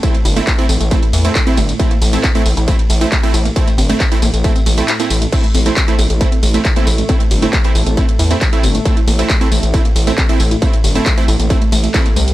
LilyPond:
<<
  \new Staff \with { instrumentName = "Supersaw synth" } { \time 4/4 \key a \phrygian \tempo 4 = 136 <a c' e'>16 r8 <a c' e'>16 r16 <a c' e'>16 r8 <a c' e'>16 r8 <a c' e'>16 r16 <a c' e'>16 r8 | <a c' e'>16 r8 <a c' e'>16 r16 <a c' e'>16 r8 <a c' e'>16 r8 <a c' e'>16 r16 <a c' e'>16 r8 | <a c' e'>16 r8 <a c' e'>16 r16 <a c' e'>16 r8 <a c' e'>16 r8 <a c' e'>16 r16 <a c' e'>16 r8 | <a c' e'>16 r8 <a c' e'>16 r16 <a c' e'>16 r8 <a c' e'>16 r8 <a c' e'>16 r16 <a c' e'>16 r8 |
<a c' e'>16 r8 <a c' e'>16 r16 <a c' e'>16 r8 <a c' e'>16 r8 <a c' e'>16 r16 <a c' e'>16 r8 | <a c' e'>16 r8 <a c' e'>16 r16 <a c' e'>16 r8 <a c' e'>16 r8 <a c' e'>16 r16 <a c' e'>16 r8 | <a c' e'>16 r8 <a c' e'>16 r16 <a c' e'>16 r8 <a c' e'>16 r8. <a c' e'>16 r8. | }
  \new Staff \with { instrumentName = "Synth arpeggio sound" } { \time 4/4 \key a \phrygian a16 r16 e'16 bes16 r16 a16 c'16 a16 r16 e'16 bes16 r16 a16 c'16 a16 r16 | e'16 bes16 r16 a16 c'16 a16 r16 e'16 bes16 r16 a16 c'16 a16 r16 e'16 bes16 | r16 a16 c'16 a16 r16 e'16 bes16 r16 a16 c'16 a16 r16 e'16 bes16 r16 a16 | r16 a16 c'16 a16 r16 e'16 bes16 r16 a16 c'16 a16 r16 e'16 bes16 r16 a16 |
c'16 a16 r16 e'16 bes16 r16 a16 c'16 a16 r16 e'16 bes16 r16 a16 c'16 a16 | r16 e'16 bes16 r16 a16 c'16 a16 r16 e'16 bes16 r16 a16 c'16 a16 r16 e'16 | bes16 r16 a16 c'16 a16 r16 e'16 bes16 r16 a16 a16 a16 a16 bes16 a16 r16 | }
  \new Staff \with { instrumentName = "Synth drone" } { \clef bass \time 4/4 \key a \phrygian <a, a>1~ | <a, a>1~ | <a, a>1 | <a, a>1~ |
<a, a>1~ | <a, a>1~ | <a, a>1 | }
  \new Staff \with { instrumentName = "Analog synth bass" } { \clef bass \time 4/4 \key a \phrygian r8 g,,16 r8. a,,16 a,,16 r8 e,16 r8. g,,16 r16 | r8 a,,16 r8. a,,16 a,,16 r8 a,,16 r8. a,,16 r16 | r8 g,,16 r8. a,,16 a,,16 r8 a,,16 r8. a,,16 r16 | r8 a,,16 r8. a,,16 a,,16 r8 a,,16 r8. a,,16 r16 |
r8 g,,16 r8. a,,16 a,,16 r8 e,16 r8. g,,16 r16 | r8 a,,16 r8. a,,16 a,,16 r8 a,,16 r8. a,,16 r16 | r8 g,,16 r8. a,,16 a,,16 r8 a,,16 r8. c,16 r16 | }
  \new DrumStaff \with { instrumentName = "Drums" } \drummode { \time 4/4 <hh bd tamb>16 hh16 <hho cymr tamb>16 <hh tamb>16 <hc hh bd tamb>16 hh16 <hho cymr tamb>16 <hh tamb>16 <hh bd tamb>16 hh16 <hho cymr tamb>16 <hh tamb>16 <hc hh bd tamb>16 hh16 <hho cymr tamb>16 <hh tamb>16 | <hh bd tamb>16 hh16 <hho cymr tamb>16 <hh tamb>16 <hc hh bd tamb>16 hh16 <hho cymr tamb>16 <hh tamb>16 <hh bd tamb>16 hh16 <hho cymr tamb>16 <hh tamb>16 <hc hh bd tamb>16 hh16 <hho cymr tamb>16 <hh tamb>16 | <hh bd tamb>16 <hh tamb>16 <hho cymr tamb>16 <hh tamb>16 <hc hh bd tamb>16 <hh tamb>16 <hho cymr tamb>16 <hh tamb>16 <hh bd tamb>16 <hh tamb>16 <hho cymr tamb>16 <hh tamb>16 <hc hh tamb>16 <hh tamb>16 <hho cymr tamb>16 <hh tamb>16 | <cymc hh bd tamb>16 hh16 <hho cymr tamb>16 <hh tamb>16 <hc hh bd tamb>16 hh16 <hho cymr tamb>16 <hh tamb>16 <hh bd tamb>16 hh16 <hho cymr tamb>16 <hh tamb>16 <hc hh bd tamb>16 hh16 <hho cymr tamb>16 <hh tamb>16 |
<hh bd tamb>16 hh16 <hho cymr tamb>16 <hh tamb>16 <hc hh bd tamb>16 hh16 <hho cymr tamb>16 <hh tamb>16 <hh bd tamb>16 hh16 <hho cymr tamb>16 <hh tamb>16 <hc hh bd tamb>16 hh16 <hho cymr tamb>16 <hh tamb>16 | <hh bd tamb>16 hh16 <hho cymr tamb>16 <hh tamb>16 <hc hh bd tamb>16 hh16 <hho cymr tamb>16 <hh tamb>16 <hh bd tamb>16 hh16 <hho cymr tamb>16 <hh tamb>16 <hc hh bd tamb>16 hh16 <hho cymr tamb>16 <hh tamb>16 | <hh bd tamb>16 hh16 <hho cymr tamb>16 <hh tamb>16 <hc hh bd tamb>16 hh16 <hho cymr tamb>16 <hh tamb>16 <hh bd tamb>16 hh16 <hho cymr tamb>16 <hh tamb>16 <hc hh bd tamb>16 <hh tamb>16 <hho cymr tamb>16 <hh tamb>16 | }
>>